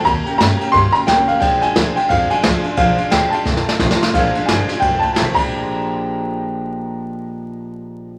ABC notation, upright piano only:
X:1
M:4/4
L:1/8
Q:"Swing" 1/4=176
K:Bbmix
V:1 name="Upright piano"
b2 b2 c' b g f | g a2 g f a3 | f2 g =a4 z | f2 a2 g =a a b- |
b8- | b8 |]